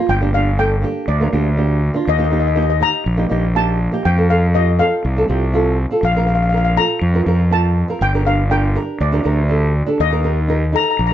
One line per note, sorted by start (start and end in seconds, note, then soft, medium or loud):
0.09 0.83 G1 medium
0.09 0.35 G5 medium
0.21 0.29 A#3 medium
0.21 0.29 D4 medium
0.21 0.29 G4 medium
0.34 0.49 A#3 medium
0.34 0.49 D4 medium
0.34 0.50 G4 medium
0.34 0.57 F5 medium
0.58 0.73 A#3 medium
0.58 0.74 D4 medium
0.58 0.74 A4 medium
0.58 1.10 G5 medium
0.82 1.05 A#3 medium
0.82 1.06 D4 medium
0.82 1.06 G4 medium
1.08 1.26 D2 medium
1.08 1.54 D5 medium
1.20 1.28 A#3 medium
1.20 1.28 D4 medium
1.20 1.29 A#4 medium
1.32 1.89 D2 medium
1.32 1.48 A#3 medium
1.32 1.48 D4 medium
1.32 1.49 G4 medium
1.57 1.79 A#3 medium
1.57 1.80 D4 medium
1.57 1.80 G4 medium
1.94 2.06 A#3 medium
1.94 2.07 D4 medium
1.94 2.07 F4 medium
2.07 2.82 D#2 medium
2.07 2.15 D#5 medium
2.17 2.26 A#3 medium
2.17 2.27 D#4 medium
2.17 2.27 G4 medium
2.17 2.23 D#5 medium
2.25 2.30 D#5 medium
2.31 2.46 A#3 medium
2.31 2.47 D#4 medium
2.31 2.47 G4 medium
2.31 2.38 D#5 soft
2.40 2.46 D#5 medium
2.47 2.53 D#5 soft
2.55 2.71 A#3 medium
2.55 2.71 D#4 medium
2.55 2.72 G4 medium
2.55 2.61 D#5 medium
2.62 2.68 D#5 medium
2.70 2.76 D#5 medium
2.80 3.03 A#3 medium
2.80 3.03 D#4 medium
2.80 3.04 G4 medium
2.80 3.58 A#5 loud
3.06 3.25 A#1 medium
3.17 3.25 A#3 medium
3.17 3.25 D#4 medium
3.17 3.26 G4 medium
3.29 3.87 A#1 medium
3.29 3.45 A#3 medium
3.29 3.46 D#4 medium
3.29 3.46 G4 medium
3.55 3.77 A#3 medium
3.55 3.78 D#4 medium
3.55 3.78 G4 medium
3.55 4.02 A5 medium
3.92 4.04 A#3 medium
3.92 4.05 D#4 medium
3.92 4.05 G4 medium
4.05 4.80 F2 medium
4.05 4.31 G5 medium
4.16 4.24 C4 medium
4.16 4.25 F4 medium
4.16 4.25 A4 medium
4.29 4.44 C4 medium
4.29 4.45 F4 medium
4.29 4.45 A4 medium
4.29 4.53 F5 medium
4.54 4.69 C4 medium
4.54 4.70 F4 medium
4.54 4.70 G4 medium
4.54 4.80 D#5 medium
4.79 5.01 C4 medium
4.79 5.02 F4 medium
4.79 5.02 A4 medium
4.79 5.74 F5 medium
5.05 5.23 C2 medium
5.16 5.24 C4 medium
5.16 5.24 F4 medium
5.16 5.25 A4 medium
5.28 5.85 C2 medium
5.28 5.43 C4 medium
5.28 5.44 F4 medium
5.28 5.44 G4 medium
5.53 5.76 C4 medium
5.53 5.76 F4 medium
5.53 5.77 A4 medium
5.91 6.03 C4 medium
5.91 6.03 F4 medium
5.91 6.04 A4 medium
6.03 6.77 A#1 medium
6.03 6.11 F5 medium
6.12 6.23 C4 medium
6.12 6.23 F4 medium
6.12 6.18 F5 medium
6.17 6.24 A#4 medium
6.17 6.26 F5 medium
6.27 6.43 C4 medium
6.27 6.43 F4 medium
6.27 6.44 A#4 medium
6.27 6.34 F5 soft
6.35 6.42 F5 medium
6.43 6.48 F5 soft
6.49 6.68 C4 medium
6.49 6.56 F5 medium
6.53 6.68 F4 medium
6.53 6.68 A#4 medium
6.53 6.63 F5 medium
6.64 6.72 F5 medium
6.76 6.99 C4 medium
6.76 7.00 F4 medium
6.76 7.00 A4 medium
6.76 7.48 A#5 medium
7.01 7.20 F2 medium
7.13 7.21 C4 medium
7.13 7.22 F4 medium
7.13 7.22 A#4 medium
7.26 7.82 F2 medium
7.26 7.42 C4 medium
7.26 7.42 F4 medium
7.26 7.43 A#4 medium
7.51 7.74 C4 medium
7.51 7.74 F4 medium
7.51 7.75 A#4 medium
7.51 8.03 A5 medium
7.88 8.01 C4 medium
7.88 8.01 F4 medium
7.88 8.02 A#4 medium
8.01 8.76 G1 medium
8.01 8.27 G5 medium
8.13 8.21 D4 medium
8.13 8.22 G4 medium
8.13 8.22 A#4 medium
8.25 8.41 D4 medium
8.25 8.41 G4 medium
8.25 8.41 A#4 medium
8.25 8.38 F5 medium
8.50 8.65 D4 medium
8.50 8.66 G4 medium
8.50 8.66 A#4 medium
8.50 9.02 G5 medium
8.75 8.98 D4 medium
8.75 8.98 G4 medium
8.75 8.98 A#4 medium
9.00 9.19 D2 medium
9.00 9.47 D5 medium
9.12 9.20 D4 medium
9.12 9.20 G4 medium
9.12 9.21 A#4 medium
9.24 9.81 D2 medium
9.24 9.40 D4 medium
9.24 9.40 G4 medium
9.24 9.40 A#4 medium
9.49 9.72 D4 medium
9.49 9.72 G4 medium
9.49 9.73 A4 medium
9.86 9.99 D4 medium
9.86 10.00 G4 medium
9.86 10.00 A4 medium
10.00 10.74 D#2 medium
10.00 10.46 D#5 loud
10.11 10.19 D#4 medium
10.11 10.19 G4 medium
10.11 10.20 A#4 medium
10.23 10.39 D#4 medium
10.23 10.39 G4 medium
10.23 10.40 A#4 medium
10.48 10.64 D#4 medium
10.48 10.64 G4 medium
10.48 10.65 A#4 medium
10.72 10.96 D#4 medium
10.72 10.96 G4 medium
10.72 10.96 A4 medium
10.72 10.83 A#5 medium
10.84 10.89 A#5 medium
10.91 10.98 A#5 medium
10.99 11.13 A#1 medium
10.99 11.05 A#5 medium
11.07 11.13 D#4 medium
11.07 11.13 A#5 medium